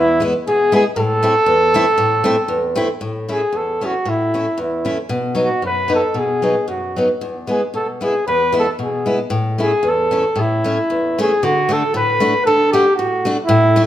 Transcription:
Already playing: steel-string acoustic guitar E2
0.00 flugelhorn E4
0.20 steel-string acoustic guitar G#3 B3 E4
0.47 steel-string acoustic guitar B2, flugelhorn G#4
0.72 steel-string acoustic guitar G#3 B3 E4, flugelhorn G#4
0.96 steel-string acoustic guitar A2, flugelhorn A4
1.23 steel-string acoustic guitar A3 C4 E4
1.46 steel-string acoustic guitar E2
1.74 steel-string acoustic guitar A3 C4 E4
1.98 steel-string acoustic guitar A2
2.24 steel-string acoustic guitar A3 C4 E4
2.48 steel-string acoustic guitar E2
2.76 steel-string acoustic guitar A3 C4 E4
3.01 steel-string acoustic guitar A2
3.29 steel-string acoustic guitar A3 C#4 E4, flugelhorn G#4
3.52 steel-string acoustic guitar E2, flugelhorn A4
3.81 steel-string acoustic guitar A3 C#4 E4, flugelhorn F#4
4.05 steel-string acoustic guitar A2, flugelhorn E4
4.34 steel-string acoustic guitar A3 C#4 E4
4.58 steel-string acoustic guitar E2, flugelhorn E4
4.85 steel-string acoustic guitar A3 C#4 E4
5.09 steel-string acoustic guitar B2
5.35 steel-string acoustic guitar F#3 B3 D#4
5.43 flugelhorn F#4
5.62 steel-string acoustic guitar F#2, flugelhorn B4
5.88 steel-string acoustic guitar F#3 B3 D#4
5.94 flugelhorn A4
6.14 steel-string acoustic guitar B2
6.18 flugelhorn G#4
6.42 steel-string acoustic guitar F#3 B3 D#4
6.68 steel-string acoustic guitar F#2, flugelhorn F#4
6.96 steel-string acoustic guitar F#3 B3 D#4
7.21 steel-string acoustic guitar E2
7.47 steel-string acoustic guitar G#3 B3 E4, flugelhorn G#4
7.74 steel-string acoustic guitar B2, flugelhorn A4
8.01 steel-string acoustic guitar G#3 B3 E4, flugelhorn G#4
8.27 steel-string acoustic guitar E2, flugelhorn B4
8.52 steel-string acoustic guitar G#3 B3 E4
8.59 flugelhorn A4
8.79 steel-string acoustic guitar B2
8.84 flugelhorn G#4
9.06 steel-string acoustic guitar G#3 B3 E4
9.30 steel-string acoustic guitar A2
9.58 steel-string acoustic guitar A3 C#4 E4, flugelhorn G#4
9.83 steel-string acoustic guitar E2
9.89 flugelhorn A4
10.11 steel-string acoustic guitar A3 C#4 E4
10.36 steel-string acoustic guitar A2
10.40 flugelhorn E4
10.64 steel-string acoustic guitar A3 C#4 E4
10.90 steel-string acoustic guitar E2
11.19 steel-string acoustic guitar A3 C#4 E4, flugelhorn G#4
11.43 steel-string acoustic guitar D3, flugelhorn F#4
11.69 steel-string acoustic guitar A3 D4 F#4, flugelhorn A4
11.94 steel-string acoustic guitar A2, flugelhorn B4
12.20 steel-string acoustic guitar A3 D4 F#4
12.46 steel-string acoustic guitar D3, flugelhorn A4
12.72 steel-string acoustic guitar A3 D4 F#4, flugelhorn G4
12.96 steel-string acoustic guitar A2, flugelhorn F#4
13.25 steel-string acoustic guitar A3 D4 F#4
13.45 steel-string acoustic guitar A2, flugelhorn E4
13.76 steel-string acoustic guitar A3 D4 E4

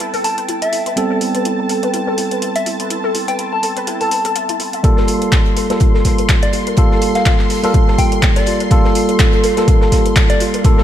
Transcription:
Already playing: tine electric piano G3 B3 C4 A4, ambient pad A4 B4 G5, analog synth pad A5
0.00 synth pluck E4, closed hi-hat
0.14 synth pluck A4, open hi-hat
0.24 synth pluck E4, soft synth lead A5, open hi-hat
0.38 synth pluck B4, closed hi-hat
0.48 synth pluck E4, closed hi-hat
0.62 synth pluck A4, soft synth lead E5, closed hi-hat
0.73 synth pluck E4, open hi-hat
0.86 synth pluck B4, closed hi-hat
0.96 tine electric piano G3 B3 C4 A4, synth pluck E4, ambient pad C6, closed hi-hat
1.10 synth pluck A4
1.21 synth pluck E4, open hi-hat
1.35 synth pluck B4, closed hi-hat
1.45 synth pluck E4, closed hi-hat
1.59 synth pluck A4
1.69 synth pluck A4, open hi-hat
1.83 synth pluck B4, closed hi-hat
1.94 synth pluck E4, closed hi-hat
2.07 synth pluck A4
2.18 synth pluck E4, open hi-hat
2.31 synth pluck B4, closed hi-hat
2.42 synth pluck E4, closed hi-hat
2.56 synth pluck A4, soft synth lead E5, closed hi-hat
2.66 synth pluck E4, open hi-hat
2.80 synth pluck B4, closed hi-hat
2.90 synth pluck E4, closed hi-hat
3.04 synth pluck A4
3.15 synth pluck E4, open hi-hat
3.28 synth pluck B4, soft synth lead G5, closed hi-hat
3.39 synth pluck E4, soft synth lead G5, closed hi-hat
3.52 synth pluck A4, soft synth lead A5
3.63 synth pluck A4, open hi-hat
3.77 synth pluck B4, closed hi-hat
3.87 synth pluck E4, closed hi-hat
4.01 synth pluck A4, soft synth lead A5, open hi-hat
4.11 synth pluck B4, open hi-hat
4.25 synth pluck A4, closed hi-hat
4.36 synth pluck E5, closed hi-hat
4.49 synth pluck E4, closed hi-hat
4.60 synth pluck E4, open hi-hat
4.73 synth pluck E5, closed hi-hat
4.83 tine electric piano G3 A#3 F4 A4, ambient pad A#3 G4 A4 F5, synth pluck F4, analog synth pad C6, kick, closed hi-hat
4.97 synth pluck A4, snare
5.08 synth pluck F4, closed hi-hat, open hi-hat
5.22 synth pluck A#4, closed hi-hat
5.32 synth pluck F4, kick, snare, clap, closed hi-hat
5.46 synth pluck A4, closed hi-hat
5.57 synth pluck A4, closed hi-hat, open hi-hat
5.69 tine electric piano G3 A#3 F4 A4, synth pluck A#4, snare, closed hi-hat
5.80 synth pluck F4, kick, closed hi-hat
5.94 synth pluck A4, snare
6.05 synth pluck F4, kick, snare, closed hi-hat, open hi-hat
6.18 synth pluck A#4, closed hi-hat
6.29 synth pluck F4, kick, snare, clap, closed hi-hat
6.43 synth pluck A4, soft synth lead D5, closed hi-hat
6.53 synth pluck F4, closed hi-hat, open hi-hat
6.67 synth pluck A#4, closed hi-hat
6.77 tine electric piano G3 A#3 F4 A4, synth pluck F4, kick, closed hi-hat
6.91 synth pluck A4, snare
7.02 synth pluck F4, closed hi-hat, open hi-hat
7.15 synth pluck A#4, soft synth lead F5, snare, closed hi-hat
7.26 synth pluck F4, soft synth lead F5, kick, snare, clap, closed hi-hat
7.39 synth pluck A4, snare, clap
7.50 synth pluck A4, open hi-hat
7.63 tine electric piano G3 A#3 F4 A4, synth pluck A#4, closed hi-hat
7.74 synth pluck F4, kick, closed hi-hat
7.88 synth pluck A4, snare
7.98 synth pluck F4, soft synth lead G5, kick, closed hi-hat, open hi-hat
8.12 synth pluck A#4, closed hi-hat
8.22 synth pluck F4, kick, snare, clap, closed hi-hat
8.36 synth pluck A4, soft synth lead D5, snare, closed hi-hat
8.46 synth pluck F4, closed hi-hat, open hi-hat
8.60 synth pluck A#4, closed hi-hat
8.70 tine electric piano G3 A#3 F4 A4, synth pluck F4, kick, closed hi-hat
8.84 synth pluck A4, snare
8.95 synth pluck F4, closed hi-hat, open hi-hat
9.09 synth pluck A#4, closed hi-hat
9.19 synth pluck F4, kick, snare, clap, closed hi-hat
9.33 synth pluck A4, closed hi-hat
9.44 synth pluck A4, closed hi-hat, open hi-hat
9.57 tine electric piano G3 A#3 F4 A4, synth pluck A#4, snare, closed hi-hat
9.68 synth pluck F4, kick, closed hi-hat
9.81 synth pluck A4, snare
9.92 synth pluck F4, kick, snare, closed hi-hat, open hi-hat
10.06 synth pluck A#4, closed hi-hat
10.16 synth pluck F4, kick, snare, clap, closed hi-hat
10.30 synth pluck A4, soft synth lead D5, closed hi-hat
10.40 synth pluck F4, closed hi-hat, open hi-hat
10.54 synth pluck A#4, closed hi-hat
10.64 tine electric piano G3 A#3 F4 A4, synth pluck F4, kick, closed hi-hat
10.78 synth pluck A4, snare

